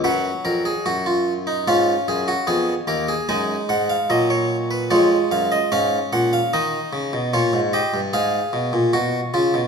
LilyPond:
<<
  \new Staff \with { instrumentName = "Harpsichord" } { \time 4/4 \key fis \mixolydian \tempo 4 = 74 << { fis''2 f''2 | gis''8 fis''16 eis''16 dis''16 cis''8 b'16 cis''8 eis''16 dis''16 eis''8 fis''16 eis''16 | dis''4 cis''8 dis''8 eis''2 | } \\ { b'8 ais'16 gis'16 fis'16 eis'8 dis'16 f'8 aes'16 fis'16 aes'8 ais'16 aes'16 | dis'2 eis'4 cis'4 | dis'4 eis'8 g'8 gis'4 fis'8 eis'8 | } >> }
  \new Staff \with { instrumentName = "Harpsichord" } { \clef bass \time 4/4 \key fis \mixolydian << { fis2 cis'4 ces'8 ais8 | gis4 fis4 gis2 | r1 | } \\ { fis,8 eis,8 fis,4 aes,8 fis,8 f,8 dis,8 | fis,8 gis,8 ais,4 eis,8 fis,8 gis,8 ais,8 | dis8 cis16 b,16 ais,16 gis,8 g,16 gis,8 b,16 ais,16 b,8 cis16 b,16 | } >> }
>>